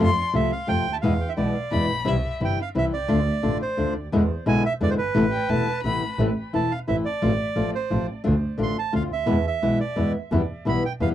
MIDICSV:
0, 0, Header, 1, 5, 480
1, 0, Start_track
1, 0, Key_signature, 0, "minor"
1, 0, Tempo, 343643
1, 15, Time_signature, 3, 2, 24, 8
1, 15567, End_track
2, 0, Start_track
2, 0, Title_t, "Violin"
2, 0, Program_c, 0, 40
2, 30, Note_on_c, 0, 84, 106
2, 355, Note_off_c, 0, 84, 0
2, 2399, Note_on_c, 0, 83, 95
2, 2901, Note_on_c, 0, 76, 79
2, 2922, Note_off_c, 0, 83, 0
2, 3263, Note_off_c, 0, 76, 0
2, 7420, Note_on_c, 0, 79, 79
2, 7682, Note_on_c, 0, 81, 89
2, 7703, Note_off_c, 0, 79, 0
2, 8140, Note_off_c, 0, 81, 0
2, 8148, Note_on_c, 0, 83, 83
2, 8613, Note_off_c, 0, 83, 0
2, 15567, End_track
3, 0, Start_track
3, 0, Title_t, "Bandoneon"
3, 0, Program_c, 1, 23
3, 490, Note_on_c, 1, 76, 83
3, 714, Note_off_c, 1, 76, 0
3, 724, Note_on_c, 1, 77, 86
3, 951, Note_off_c, 1, 77, 0
3, 955, Note_on_c, 1, 79, 104
3, 1297, Note_on_c, 1, 81, 83
3, 1334, Note_off_c, 1, 79, 0
3, 1358, Note_off_c, 1, 81, 0
3, 1419, Note_on_c, 1, 77, 92
3, 1799, Note_on_c, 1, 76, 83
3, 1806, Note_off_c, 1, 77, 0
3, 1856, Note_off_c, 1, 76, 0
3, 1916, Note_on_c, 1, 74, 69
3, 2597, Note_off_c, 1, 74, 0
3, 3412, Note_on_c, 1, 79, 89
3, 3622, Note_off_c, 1, 79, 0
3, 3659, Note_on_c, 1, 77, 76
3, 3759, Note_off_c, 1, 77, 0
3, 3879, Note_on_c, 1, 76, 91
3, 3983, Note_off_c, 1, 76, 0
3, 4097, Note_on_c, 1, 74, 86
3, 4999, Note_off_c, 1, 74, 0
3, 5057, Note_on_c, 1, 72, 75
3, 5499, Note_off_c, 1, 72, 0
3, 6256, Note_on_c, 1, 80, 105
3, 6472, Note_off_c, 1, 80, 0
3, 6508, Note_on_c, 1, 76, 100
3, 6610, Note_off_c, 1, 76, 0
3, 6749, Note_on_c, 1, 74, 99
3, 6847, Note_off_c, 1, 74, 0
3, 6853, Note_on_c, 1, 72, 80
3, 6904, Note_off_c, 1, 72, 0
3, 6961, Note_on_c, 1, 71, 83
3, 8113, Note_off_c, 1, 71, 0
3, 9144, Note_on_c, 1, 81, 84
3, 9378, Note_on_c, 1, 77, 89
3, 9394, Note_off_c, 1, 81, 0
3, 9488, Note_off_c, 1, 77, 0
3, 9612, Note_on_c, 1, 76, 85
3, 9723, Note_off_c, 1, 76, 0
3, 9850, Note_on_c, 1, 74, 87
3, 10764, Note_off_c, 1, 74, 0
3, 10824, Note_on_c, 1, 72, 72
3, 11269, Note_off_c, 1, 72, 0
3, 12047, Note_on_c, 1, 84, 102
3, 12253, Note_off_c, 1, 84, 0
3, 12273, Note_on_c, 1, 81, 89
3, 12486, Note_off_c, 1, 81, 0
3, 12510, Note_on_c, 1, 77, 90
3, 12613, Note_off_c, 1, 77, 0
3, 12751, Note_on_c, 1, 76, 84
3, 13212, Note_off_c, 1, 76, 0
3, 13233, Note_on_c, 1, 76, 77
3, 13669, Note_off_c, 1, 76, 0
3, 13697, Note_on_c, 1, 74, 67
3, 14143, Note_off_c, 1, 74, 0
3, 14921, Note_on_c, 1, 83, 87
3, 15134, Note_off_c, 1, 83, 0
3, 15160, Note_on_c, 1, 79, 85
3, 15263, Note_off_c, 1, 79, 0
3, 15388, Note_on_c, 1, 77, 81
3, 15493, Note_off_c, 1, 77, 0
3, 15567, End_track
4, 0, Start_track
4, 0, Title_t, "Nylon-string guitar"
4, 0, Program_c, 2, 24
4, 468, Note_on_c, 2, 48, 76
4, 468, Note_on_c, 2, 53, 74
4, 468, Note_on_c, 2, 57, 72
4, 479, Note_on_c, 2, 60, 79
4, 480, Note_on_c, 2, 65, 76
4, 714, Note_off_c, 2, 48, 0
4, 714, Note_off_c, 2, 53, 0
4, 714, Note_off_c, 2, 57, 0
4, 720, Note_off_c, 2, 60, 0
4, 720, Note_off_c, 2, 65, 0
4, 935, Note_on_c, 2, 48, 61
4, 942, Note_on_c, 2, 57, 63
4, 945, Note_on_c, 2, 53, 59
4, 948, Note_on_c, 2, 60, 64
4, 949, Note_on_c, 2, 65, 71
4, 1187, Note_off_c, 2, 48, 0
4, 1191, Note_off_c, 2, 57, 0
4, 1192, Note_off_c, 2, 53, 0
4, 1193, Note_off_c, 2, 60, 0
4, 1194, Note_off_c, 2, 65, 0
4, 1434, Note_on_c, 2, 47, 84
4, 1447, Note_on_c, 2, 52, 89
4, 1447, Note_on_c, 2, 56, 83
4, 1448, Note_on_c, 2, 59, 88
4, 1449, Note_on_c, 2, 64, 98
4, 1566, Note_off_c, 2, 47, 0
4, 1572, Note_off_c, 2, 56, 0
4, 1573, Note_off_c, 2, 52, 0
4, 1573, Note_off_c, 2, 59, 0
4, 1573, Note_off_c, 2, 64, 0
4, 1911, Note_on_c, 2, 47, 63
4, 1914, Note_on_c, 2, 52, 62
4, 1916, Note_on_c, 2, 56, 59
4, 1919, Note_on_c, 2, 59, 73
4, 1920, Note_on_c, 2, 64, 65
4, 2155, Note_off_c, 2, 47, 0
4, 2157, Note_off_c, 2, 52, 0
4, 2157, Note_off_c, 2, 56, 0
4, 2159, Note_off_c, 2, 59, 0
4, 2159, Note_off_c, 2, 64, 0
4, 2390, Note_on_c, 2, 47, 56
4, 2392, Note_on_c, 2, 52, 58
4, 2400, Note_on_c, 2, 59, 54
4, 2401, Note_on_c, 2, 56, 52
4, 2413, Note_on_c, 2, 64, 61
4, 2638, Note_off_c, 2, 47, 0
4, 2639, Note_off_c, 2, 52, 0
4, 2643, Note_off_c, 2, 59, 0
4, 2644, Note_off_c, 2, 56, 0
4, 2650, Note_off_c, 2, 64, 0
4, 2860, Note_on_c, 2, 48, 83
4, 2861, Note_on_c, 2, 52, 79
4, 2862, Note_on_c, 2, 60, 85
4, 2866, Note_on_c, 2, 55, 83
4, 2871, Note_on_c, 2, 64, 87
4, 3004, Note_off_c, 2, 48, 0
4, 3005, Note_off_c, 2, 52, 0
4, 3006, Note_off_c, 2, 60, 0
4, 3008, Note_off_c, 2, 55, 0
4, 3010, Note_off_c, 2, 64, 0
4, 3356, Note_on_c, 2, 48, 57
4, 3360, Note_on_c, 2, 52, 65
4, 3362, Note_on_c, 2, 55, 64
4, 3370, Note_on_c, 2, 60, 62
4, 3370, Note_on_c, 2, 64, 74
4, 3603, Note_off_c, 2, 48, 0
4, 3605, Note_off_c, 2, 52, 0
4, 3607, Note_off_c, 2, 55, 0
4, 3611, Note_off_c, 2, 60, 0
4, 3611, Note_off_c, 2, 64, 0
4, 3838, Note_on_c, 2, 48, 61
4, 3843, Note_on_c, 2, 52, 65
4, 3843, Note_on_c, 2, 55, 61
4, 3847, Note_on_c, 2, 64, 64
4, 3854, Note_on_c, 2, 60, 68
4, 4083, Note_off_c, 2, 48, 0
4, 4086, Note_off_c, 2, 52, 0
4, 4086, Note_off_c, 2, 55, 0
4, 4087, Note_off_c, 2, 64, 0
4, 4091, Note_off_c, 2, 60, 0
4, 4306, Note_on_c, 2, 50, 92
4, 4308, Note_on_c, 2, 57, 91
4, 4314, Note_on_c, 2, 62, 95
4, 4319, Note_on_c, 2, 65, 90
4, 4447, Note_off_c, 2, 50, 0
4, 4447, Note_off_c, 2, 57, 0
4, 4451, Note_off_c, 2, 62, 0
4, 4453, Note_off_c, 2, 65, 0
4, 4788, Note_on_c, 2, 50, 67
4, 4790, Note_on_c, 2, 57, 65
4, 4793, Note_on_c, 2, 62, 68
4, 4794, Note_on_c, 2, 65, 69
4, 5036, Note_off_c, 2, 50, 0
4, 5037, Note_off_c, 2, 57, 0
4, 5039, Note_off_c, 2, 62, 0
4, 5039, Note_off_c, 2, 65, 0
4, 5269, Note_on_c, 2, 50, 65
4, 5275, Note_on_c, 2, 57, 58
4, 5282, Note_on_c, 2, 65, 65
4, 5287, Note_on_c, 2, 62, 57
4, 5513, Note_off_c, 2, 50, 0
4, 5516, Note_off_c, 2, 57, 0
4, 5520, Note_off_c, 2, 65, 0
4, 5522, Note_off_c, 2, 62, 0
4, 5760, Note_on_c, 2, 47, 83
4, 5768, Note_on_c, 2, 50, 83
4, 5769, Note_on_c, 2, 56, 88
4, 5770, Note_on_c, 2, 59, 90
4, 5772, Note_on_c, 2, 64, 102
4, 5887, Note_off_c, 2, 47, 0
4, 5891, Note_off_c, 2, 50, 0
4, 5892, Note_off_c, 2, 56, 0
4, 5892, Note_off_c, 2, 59, 0
4, 5893, Note_off_c, 2, 64, 0
4, 6229, Note_on_c, 2, 47, 74
4, 6231, Note_on_c, 2, 56, 85
4, 6240, Note_on_c, 2, 64, 81
4, 6242, Note_on_c, 2, 59, 75
4, 6244, Note_on_c, 2, 50, 72
4, 6469, Note_off_c, 2, 47, 0
4, 6470, Note_off_c, 2, 56, 0
4, 6475, Note_off_c, 2, 64, 0
4, 6476, Note_off_c, 2, 59, 0
4, 6477, Note_off_c, 2, 50, 0
4, 6712, Note_on_c, 2, 56, 68
4, 6715, Note_on_c, 2, 47, 63
4, 6719, Note_on_c, 2, 50, 72
4, 6719, Note_on_c, 2, 59, 65
4, 6721, Note_on_c, 2, 64, 67
4, 6949, Note_off_c, 2, 56, 0
4, 6951, Note_off_c, 2, 47, 0
4, 6953, Note_off_c, 2, 50, 0
4, 6953, Note_off_c, 2, 59, 0
4, 6954, Note_off_c, 2, 64, 0
4, 7188, Note_on_c, 2, 48, 89
4, 7188, Note_on_c, 2, 52, 95
4, 7189, Note_on_c, 2, 59, 93
4, 7195, Note_on_c, 2, 57, 95
4, 7201, Note_on_c, 2, 64, 84
4, 7317, Note_off_c, 2, 48, 0
4, 7317, Note_off_c, 2, 52, 0
4, 7318, Note_off_c, 2, 59, 0
4, 7321, Note_off_c, 2, 57, 0
4, 7324, Note_off_c, 2, 64, 0
4, 7665, Note_on_c, 2, 48, 63
4, 7668, Note_on_c, 2, 52, 62
4, 7676, Note_on_c, 2, 64, 72
4, 7678, Note_on_c, 2, 57, 62
4, 7680, Note_on_c, 2, 59, 70
4, 7910, Note_off_c, 2, 48, 0
4, 7911, Note_off_c, 2, 52, 0
4, 7915, Note_off_c, 2, 64, 0
4, 7916, Note_off_c, 2, 57, 0
4, 7917, Note_off_c, 2, 59, 0
4, 8157, Note_on_c, 2, 48, 60
4, 8167, Note_on_c, 2, 52, 57
4, 8172, Note_on_c, 2, 59, 62
4, 8174, Note_on_c, 2, 57, 60
4, 8177, Note_on_c, 2, 64, 70
4, 8402, Note_off_c, 2, 48, 0
4, 8407, Note_off_c, 2, 52, 0
4, 8410, Note_off_c, 2, 59, 0
4, 8411, Note_off_c, 2, 57, 0
4, 8412, Note_off_c, 2, 64, 0
4, 8645, Note_on_c, 2, 52, 81
4, 8653, Note_on_c, 2, 57, 81
4, 8653, Note_on_c, 2, 60, 75
4, 8669, Note_on_c, 2, 64, 84
4, 8777, Note_off_c, 2, 52, 0
4, 8781, Note_off_c, 2, 57, 0
4, 8781, Note_off_c, 2, 60, 0
4, 8789, Note_off_c, 2, 64, 0
4, 9124, Note_on_c, 2, 52, 64
4, 9126, Note_on_c, 2, 57, 62
4, 9131, Note_on_c, 2, 60, 72
4, 9132, Note_on_c, 2, 64, 65
4, 9370, Note_off_c, 2, 52, 0
4, 9371, Note_off_c, 2, 57, 0
4, 9374, Note_off_c, 2, 60, 0
4, 9374, Note_off_c, 2, 64, 0
4, 9606, Note_on_c, 2, 64, 57
4, 9607, Note_on_c, 2, 52, 61
4, 9610, Note_on_c, 2, 57, 64
4, 9616, Note_on_c, 2, 60, 57
4, 9851, Note_off_c, 2, 52, 0
4, 9851, Note_off_c, 2, 64, 0
4, 9853, Note_off_c, 2, 57, 0
4, 9856, Note_off_c, 2, 60, 0
4, 10083, Note_on_c, 2, 53, 78
4, 10085, Note_on_c, 2, 60, 86
4, 10086, Note_on_c, 2, 57, 92
4, 10095, Note_on_c, 2, 65, 86
4, 10220, Note_off_c, 2, 53, 0
4, 10221, Note_off_c, 2, 57, 0
4, 10221, Note_off_c, 2, 60, 0
4, 10226, Note_off_c, 2, 65, 0
4, 10554, Note_on_c, 2, 53, 66
4, 10555, Note_on_c, 2, 57, 67
4, 10565, Note_on_c, 2, 60, 75
4, 10565, Note_on_c, 2, 65, 72
4, 10805, Note_off_c, 2, 53, 0
4, 10806, Note_off_c, 2, 57, 0
4, 10811, Note_off_c, 2, 60, 0
4, 10811, Note_off_c, 2, 65, 0
4, 11037, Note_on_c, 2, 53, 60
4, 11050, Note_on_c, 2, 57, 62
4, 11050, Note_on_c, 2, 65, 61
4, 11051, Note_on_c, 2, 60, 64
4, 11284, Note_off_c, 2, 53, 0
4, 11290, Note_off_c, 2, 57, 0
4, 11290, Note_off_c, 2, 65, 0
4, 11291, Note_off_c, 2, 60, 0
4, 11506, Note_on_c, 2, 50, 88
4, 11511, Note_on_c, 2, 65, 91
4, 11513, Note_on_c, 2, 57, 75
4, 11514, Note_on_c, 2, 60, 88
4, 11647, Note_off_c, 2, 50, 0
4, 11649, Note_off_c, 2, 65, 0
4, 11650, Note_off_c, 2, 57, 0
4, 11650, Note_off_c, 2, 60, 0
4, 11979, Note_on_c, 2, 50, 61
4, 11991, Note_on_c, 2, 57, 67
4, 11991, Note_on_c, 2, 60, 67
4, 11996, Note_on_c, 2, 65, 76
4, 12229, Note_off_c, 2, 50, 0
4, 12235, Note_off_c, 2, 57, 0
4, 12235, Note_off_c, 2, 60, 0
4, 12237, Note_off_c, 2, 65, 0
4, 12466, Note_on_c, 2, 57, 57
4, 12468, Note_on_c, 2, 50, 54
4, 12472, Note_on_c, 2, 65, 69
4, 12480, Note_on_c, 2, 60, 71
4, 12711, Note_off_c, 2, 57, 0
4, 12712, Note_off_c, 2, 50, 0
4, 12714, Note_off_c, 2, 65, 0
4, 12719, Note_off_c, 2, 60, 0
4, 12933, Note_on_c, 2, 47, 80
4, 12938, Note_on_c, 2, 52, 80
4, 12944, Note_on_c, 2, 59, 97
4, 12946, Note_on_c, 2, 56, 81
4, 12950, Note_on_c, 2, 64, 87
4, 13074, Note_off_c, 2, 47, 0
4, 13076, Note_off_c, 2, 52, 0
4, 13079, Note_off_c, 2, 59, 0
4, 13080, Note_off_c, 2, 56, 0
4, 13082, Note_off_c, 2, 64, 0
4, 13440, Note_on_c, 2, 52, 72
4, 13442, Note_on_c, 2, 47, 64
4, 13446, Note_on_c, 2, 59, 70
4, 13447, Note_on_c, 2, 56, 71
4, 13448, Note_on_c, 2, 64, 75
4, 13679, Note_off_c, 2, 52, 0
4, 13680, Note_off_c, 2, 47, 0
4, 13682, Note_off_c, 2, 56, 0
4, 13682, Note_off_c, 2, 59, 0
4, 13683, Note_off_c, 2, 64, 0
4, 13910, Note_on_c, 2, 52, 60
4, 13913, Note_on_c, 2, 56, 62
4, 13914, Note_on_c, 2, 47, 55
4, 13925, Note_on_c, 2, 59, 69
4, 13926, Note_on_c, 2, 64, 58
4, 14157, Note_off_c, 2, 52, 0
4, 14158, Note_off_c, 2, 47, 0
4, 14158, Note_off_c, 2, 56, 0
4, 14164, Note_off_c, 2, 59, 0
4, 14164, Note_off_c, 2, 64, 0
4, 14400, Note_on_c, 2, 47, 78
4, 14415, Note_on_c, 2, 55, 82
4, 14419, Note_on_c, 2, 52, 86
4, 14423, Note_on_c, 2, 59, 79
4, 14425, Note_on_c, 2, 64, 82
4, 14533, Note_off_c, 2, 47, 0
4, 14541, Note_off_c, 2, 55, 0
4, 14542, Note_off_c, 2, 52, 0
4, 14544, Note_off_c, 2, 59, 0
4, 14545, Note_off_c, 2, 64, 0
4, 14878, Note_on_c, 2, 47, 65
4, 14888, Note_on_c, 2, 55, 67
4, 14891, Note_on_c, 2, 52, 65
4, 14899, Note_on_c, 2, 59, 68
4, 14900, Note_on_c, 2, 64, 78
4, 15123, Note_off_c, 2, 47, 0
4, 15128, Note_off_c, 2, 55, 0
4, 15129, Note_off_c, 2, 52, 0
4, 15133, Note_off_c, 2, 59, 0
4, 15134, Note_off_c, 2, 64, 0
4, 15370, Note_on_c, 2, 47, 62
4, 15370, Note_on_c, 2, 52, 66
4, 15381, Note_on_c, 2, 59, 61
4, 15382, Note_on_c, 2, 55, 56
4, 15387, Note_on_c, 2, 64, 58
4, 15567, Note_off_c, 2, 47, 0
4, 15567, Note_off_c, 2, 52, 0
4, 15567, Note_off_c, 2, 55, 0
4, 15567, Note_off_c, 2, 59, 0
4, 15567, Note_off_c, 2, 64, 0
4, 15567, End_track
5, 0, Start_track
5, 0, Title_t, "Double bass"
5, 0, Program_c, 3, 43
5, 23, Note_on_c, 3, 41, 97
5, 219, Note_off_c, 3, 41, 0
5, 484, Note_on_c, 3, 36, 64
5, 690, Note_off_c, 3, 36, 0
5, 971, Note_on_c, 3, 41, 56
5, 1173, Note_off_c, 3, 41, 0
5, 1228, Note_on_c, 3, 38, 56
5, 1448, Note_off_c, 3, 38, 0
5, 1457, Note_on_c, 3, 40, 91
5, 1655, Note_off_c, 3, 40, 0
5, 1926, Note_on_c, 3, 35, 59
5, 2130, Note_off_c, 3, 35, 0
5, 2424, Note_on_c, 3, 40, 57
5, 2622, Note_off_c, 3, 40, 0
5, 2666, Note_on_c, 3, 34, 53
5, 2881, Note_off_c, 3, 34, 0
5, 2889, Note_on_c, 3, 36, 82
5, 3098, Note_off_c, 3, 36, 0
5, 3373, Note_on_c, 3, 31, 58
5, 3580, Note_off_c, 3, 31, 0
5, 3857, Note_on_c, 3, 36, 59
5, 4060, Note_off_c, 3, 36, 0
5, 4098, Note_on_c, 3, 36, 59
5, 4319, Note_off_c, 3, 36, 0
5, 4328, Note_on_c, 3, 38, 96
5, 4535, Note_off_c, 3, 38, 0
5, 4814, Note_on_c, 3, 33, 61
5, 5017, Note_off_c, 3, 33, 0
5, 5291, Note_on_c, 3, 38, 62
5, 5492, Note_off_c, 3, 38, 0
5, 5537, Note_on_c, 3, 38, 58
5, 5762, Note_off_c, 3, 38, 0
5, 5770, Note_on_c, 3, 40, 98
5, 5969, Note_off_c, 3, 40, 0
5, 6252, Note_on_c, 3, 35, 65
5, 6448, Note_off_c, 3, 35, 0
5, 6725, Note_on_c, 3, 40, 65
5, 6924, Note_off_c, 3, 40, 0
5, 6971, Note_on_c, 3, 31, 60
5, 7179, Note_off_c, 3, 31, 0
5, 7188, Note_on_c, 3, 33, 93
5, 7395, Note_off_c, 3, 33, 0
5, 7675, Note_on_c, 3, 28, 58
5, 7881, Note_off_c, 3, 28, 0
5, 8168, Note_on_c, 3, 33, 57
5, 8375, Note_off_c, 3, 33, 0
5, 8648, Note_on_c, 3, 33, 85
5, 8857, Note_off_c, 3, 33, 0
5, 9154, Note_on_c, 3, 28, 56
5, 9353, Note_off_c, 3, 28, 0
5, 9622, Note_on_c, 3, 33, 60
5, 9826, Note_off_c, 3, 33, 0
5, 10118, Note_on_c, 3, 33, 89
5, 10315, Note_off_c, 3, 33, 0
5, 10592, Note_on_c, 3, 33, 55
5, 10792, Note_off_c, 3, 33, 0
5, 11065, Note_on_c, 3, 33, 61
5, 11266, Note_off_c, 3, 33, 0
5, 11547, Note_on_c, 3, 38, 97
5, 11744, Note_off_c, 3, 38, 0
5, 12017, Note_on_c, 3, 33, 63
5, 12216, Note_off_c, 3, 33, 0
5, 12499, Note_on_c, 3, 38, 58
5, 12696, Note_off_c, 3, 38, 0
5, 12740, Note_on_c, 3, 38, 53
5, 12968, Note_off_c, 3, 38, 0
5, 12976, Note_on_c, 3, 40, 87
5, 13173, Note_off_c, 3, 40, 0
5, 13456, Note_on_c, 3, 35, 55
5, 13654, Note_off_c, 3, 35, 0
5, 13929, Note_on_c, 3, 40, 58
5, 14133, Note_off_c, 3, 40, 0
5, 14417, Note_on_c, 3, 40, 84
5, 14620, Note_off_c, 3, 40, 0
5, 14896, Note_on_c, 3, 35, 55
5, 15100, Note_off_c, 3, 35, 0
5, 15361, Note_on_c, 3, 40, 63
5, 15567, Note_off_c, 3, 40, 0
5, 15567, End_track
0, 0, End_of_file